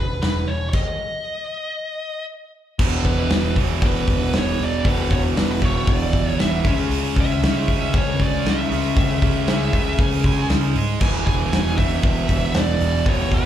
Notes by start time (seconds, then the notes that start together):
Already playing: E1 B4
0.22 E1 B4, snare, open hi-hat
0.48 E1 C#5
0.69 C#5, crash
0.73 D#5, kick
2.79 E1 E2 B2 E3, kick, crash
3.05 E1 B4, kick, open hi-hat
3.30 E1, snare, open hi-hat
3.56 E2 B2 E3, kick, open hi-hat
3.82 E1, kick, open hi-hat
3.86 B4
4.08 E1, kick, open hi-hat
4.33 E1, snare, open hi-hat
4.38 C#5
4.59 E1, open hi-hat
4.64 D5
4.85 E1 E2 B2 E3 B4, kick, open hi-hat
5.10 E1 C#5, kick, open hi-hat
5.37 E1 B4, snare, open hi-hat
5.52 B4
5.61 E1 E2 B2 E3 C#5, kick, open hi-hat
5.87 E1 D5, kick, open hi-hat
6.13 E1, kick, open hi-hat
6.28 C#5
6.39 E1 E5, snare, open hi-hat
6.65 C#2 C#3 G#3 C#4, kick, open hi-hat
6.90 C#2, open hi-hat
7.16 C#2, kick, open hi-hat
7.21 E5
7.42 C#2 C#3 G#3 C#4, snare, open hi-hat
7.68 kick, open hi-hat
7.94 C#2 C#5, kick, open hi-hat
8.20 C#2 D5, kick, open hi-hat
8.46 C#2, snare, open hi-hat
8.50 E5
8.70 C#2 C#3 G#3 C#4, open hi-hat
8.97 C#2 E5, kick, open hi-hat
9.22 C#2, kick, open hi-hat
9.47 C#2 C#3 G#3 C#4, snare, open hi-hat
9.73 C#2, kick, open hi-hat
9.98 C#2 G#5, kick, open hi-hat
10.24 C#2, kick, open hi-hat
10.49 C#2, snare, open hi-hat
10.75 G#2, open hi-hat
11.00 E1 E2 B2 E3 G#5, kick, crash
11.15 snare
11.27 E1 G#5, kick, open hi-hat
11.52 E1, snare, open hi-hat
11.78 E2 B2 E3 E5, kick, open hi-hat
12.03 E1, kick, open hi-hat
12.29 E1, kick, open hi-hat
12.54 E1 D5, snare, open hi-hat
12.80 E1, open hi-hat
13.06 E1 E2 B2 E3 C#5, kick, open hi-hat
13.20 snare
13.31 E1 B4, kick, open hi-hat